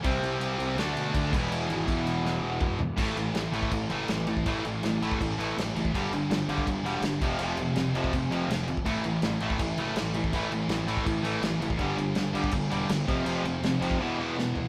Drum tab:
CC |x-x-x-x-x-x-x-x-|x-x-x-x---------|x-x-x-x-x-x-x-x-|x-x-x-x-x-x-x-x-|
SD |--------o-------|--------o-------|----o-------o---|----o-------o---|
T2 |----------------|------------o---|----------------|----------------|
FT |----------------|--------------o-|----------------|----------------|
BD |o-----------o-o-|----o-------o---|o------oo------o|o------oo------o|

CC |x-x-x-x-x-x-x-x-|x-x-x-x-x-x-x-x-|x-x-x-x-x-x-x-x-|x-x-x-x-x-x-x-x-|
SD |----o-------o---|----o-------o---|----o-------o---|----o-------o---|
T2 |----------------|----------------|----------------|----------------|
FT |----------------|----------------|----------------|----------------|
BD |o------oo-----o-|-------oo------o|o------oo------o|o------oo------o|

CC |x-x-x-x-x-x-x-x-|x-x-x-x---------|
SD |----o-------o---|----o-------o---|
T2 |----------------|----------------|
FT |----------------|--------------o-|
BD |o------oo-----o-|-------o--------|